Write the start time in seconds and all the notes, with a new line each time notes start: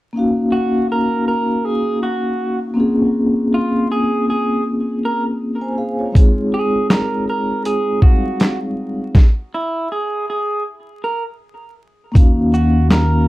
0.13 A#3 C#4 D#4
0.17 F#4 F5
0.52 F#4
0.92 A#4
1.28 A#4
1.65 G#4
2.03 F#4
2.74 A#3 C4 C#4
2.78 F4 G#4
3.54 F4
3.92 G#4
4.30 G#4
5.05 A#4
5.61 C5 G#5
5.78 G#4 F5
5.99 F4 C#5
6.12 G#3 C4 D#4, kick
6.16 F4 G#4, closed hi-hat
6.54 G#4
6.90 A#4, snare, clap, closed hi-hat
7.30 A#4
7.65 G#4, closed hi-hat
8.01 G3 C4 D#4 F#4 F5, kick
8.40 snare, clap, closed hi-hat
9.15 kick, snare
9.54 E4
9.92 G#4
10.30 G#4
11.04 A#4
12.12 A#3 C#4 D#4, kick
12.16 D#2 F#4 F5, closed hi-hat
12.54 F#4, shaker
12.91 A#4, snare, clap, closed hi-hat